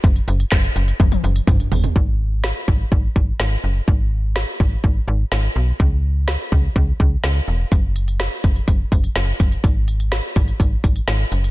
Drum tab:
HH |xxxxxxxxxxxxxxox|----------------|----------------|----------------|
CP |----x-----------|----------------|----------------|----------------|
SD |----o-----------|----o-------o---|----o-------o---|----o-------o---|
T1 |--------oo------|----------------|----------------|----------------|
T2 |------------o---|----------------|----------------|----------------|
FT |--------------oo|----------------|----------------|----------------|
BD |o---o---o---o---|o-----o-o-o-----|o-----o-o-------|o-----o-o-o-----|

HH |x-xxx-xxx-xxx-xx|x-xxx-xxx-xxx-xx|
CP |----------------|----------------|
SD |----o-------o---|----o-------o---|
T1 |----------------|----------------|
T2 |----------------|----------------|
FT |----------------|----------------|
BD |o-----o-o-o---o-|o-----o-o-o-----|